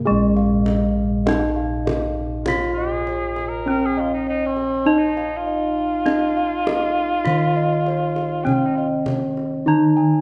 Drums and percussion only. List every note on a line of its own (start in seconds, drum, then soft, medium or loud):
0.37 kendang slap soft
0.66 kendang high medium
1.27 kendang slap soft
1.27 kendang high medium
1.87 kendang slap soft
1.87 kendang high medium
1.87 kendang low medium
2.46 kendang high medium
2.46 kendang low medium
3.07 kendang slap soft
3.36 kendang slap soft
4.57 kendang slap soft
5.17 kendang slap soft
6.06 kendang slap soft
6.06 kendang high medium
6.67 kendang slap soft
6.67 kendang high soft
7.25 kendang low medium
7.86 kendang slap soft
8.16 kendang slap soft
8.47 kendang low medium
9.06 kendang high medium
9.06 kendang low medium
9.37 kendang slap soft